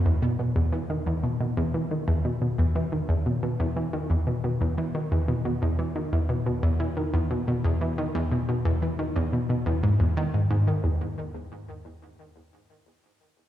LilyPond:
\new Staff \with { instrumentName = "Synth arpeggio sound" } { \clef bass \time 4/4 \key e \major \tempo 4 = 89 e,16 b,16 b,16 e,16 e16 dis16 e,16 b,16 b,16 e,16 e16 dis16 e,16 b,16 b,16 e,16 | e16 dis16 e,16 b,16 b,16 e,16 e16 dis16 e,16 b,16 b,16 e,16 e16 dis16 e,16 b,16 | b,16 e,16 e16 dis16 e,16 b,16 b,16 e,16 e16 dis16 e,16 b,16 b,16 e,16 e16 dis16 | e,16 b,16 b,16 e,16 e16 dis16 e,16 b,16 b,16 e,16 gis,16 e,16 dis16 gis,16 gis,16 dis16 |
e,8 r2. r8 | }